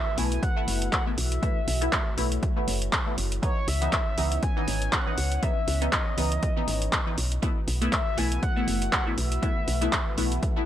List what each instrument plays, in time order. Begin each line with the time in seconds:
Already playing: string machine E3 A3 F#4 B4, soft synth lead E5
0.17 fm bass B1, synth stab A3 B3 E4, soft synth lead G#5, open hi-hat
0.32 closed hi-hat
0.43 soft synth lead F#5, kick, closed hi-hat
0.56 synth stab A3 B3 E4
0.68 fm bass F#1, open hi-hat
0.82 closed hi-hat
0.93 soft synth lead F#5, kick, clap, closed hi-hat
1.06 synth stab A3 B3 E4
1.18 fm bass B1, string machine C#5, soft synth lead E5, open hi-hat
1.32 closed hi-hat
1.42 synth stab A3 B3 E4, kick, closed hi-hat
1.68 fm bass B1, open hi-hat
1.81 synth stab A3 B3 E4, closed hi-hat
1.93 kick, clap, closed hi-hat
2.17 fm bass B1, synth stab A3 B3 E4, open hi-hat
2.32 closed hi-hat
2.43 kick, closed hi-hat
2.56 synth stab A3 B3 E4
2.68 fm bass F#1, open hi-hat
2.82 closed hi-hat
2.93 kick, clap, closed hi-hat
3.06 synth stab A3 B3 E4
3.18 fm bass F#1, open hi-hat
3.32 closed hi-hat
3.42 synth stab E3 B3 D#4, string machine B3 C#4 C#5, soft synth lead C#5, kick, closed hi-hat
3.68 fm bass C#2, soft synth lead E5, open hi-hat
3.81 synth stab E3 B3 D#4, closed hi-hat
3.93 kick, clap, closed hi-hat
4.17 fm bass C#2, synth stab E3 B3 D#4, open hi-hat
4.32 closed hi-hat
4.43 soft synth lead G#5, kick, closed hi-hat
4.56 synth stab E3 B3 D#4
4.68 fm bass G#1, open hi-hat
4.82 closed hi-hat
4.93 soft synth lead F#5, kick, clap, closed hi-hat
5.06 synth stab E3 B3 D#4
5.18 fm bass C#2, open hi-hat
5.32 closed hi-hat
5.42 synth stab E3 B3 D#4, soft synth lead E5, kick, closed hi-hat
5.68 fm bass C#2, open hi-hat
5.81 synth stab E3 B3 D#4, closed hi-hat
5.93 soft synth lead D#5, kick, clap, closed hi-hat
6.17 fm bass C#2, synth stab E3 B3 D#4, open hi-hat
6.32 closed hi-hat
6.43 kick, closed hi-hat
6.56 synth stab E3 B3 D#4
6.68 fm bass G#1, open hi-hat
6.82 closed hi-hat
6.93 kick, clap, closed hi-hat
7.06 synth stab E3 B3 D#4
7.18 fm bass B1, string machine E3 A3 F#4 B4, open hi-hat
7.32 closed hi-hat
7.42 synth stab A3 B3 E4, kick, closed hi-hat
7.68 fm bass B1, open hi-hat
7.81 synth stab A3 B3 E4, closed hi-hat
7.93 soft synth lead E5, kick, clap, closed hi-hat
8.17 fm bass B1, synth stab A3 B3 E4, soft synth lead G#5, open hi-hat
8.32 closed hi-hat
8.43 soft synth lead F#5, kick, closed hi-hat
8.56 synth stab A3 B3 E4
8.68 fm bass F#1, open hi-hat
8.82 closed hi-hat
8.93 soft synth lead F#5, kick, clap, closed hi-hat
9.06 synth stab A3 B3 E4
9.18 fm bass B1, soft synth lead E5, open hi-hat
9.32 closed hi-hat
9.42 synth stab A3 B3 E4, kick, closed hi-hat
9.68 fm bass B1, open hi-hat
9.81 synth stab A3 B3 E4, closed hi-hat
9.93 kick, clap, closed hi-hat
10.17 fm bass B1, synth stab A3 B3 E4, open hi-hat
10.32 closed hi-hat
10.43 kick, closed hi-hat
10.56 synth stab A3 B3 E4